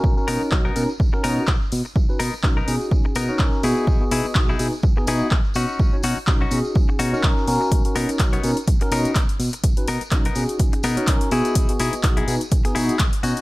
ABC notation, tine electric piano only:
X:1
M:4/4
L:1/16
Q:"Swing 16ths" 1/4=125
K:D#phr
V:1 name="Tine electric piano"
[CDFA] [CDFA]3 [CDFA] z [CDFA] z2 [CDFA] [CDFA] z4 z | z [CDFB] z2 [CDFA] z [CDFG]4- [CDFG] [CDFA] [CDFA]2 [B,FGd]2- | [B,FGd] [B,FGd]3 [DF] z [B,DFG] z2 [B,DFG] [B,DFG] z4 z | z [CDFc] z2 [CDFA] z [CDFG]4- [CDFG] [CDFA] [CDFA]2 [CDFA]2- |
[CDFA] [CDFA]3 [CDFA] z [CDFA] z2 [CDFA] [CDFA] z4 z | z [CDFB] z2 [CDFA] z [CDFG]4- [CDFG] [CDFA] [CDFA]2 [B,FGd]2- | [B,FGd] [B,FGd]3 [B,DFG] z [B,DFG] z2 [B,DFG] [B,DFG] z4 z |]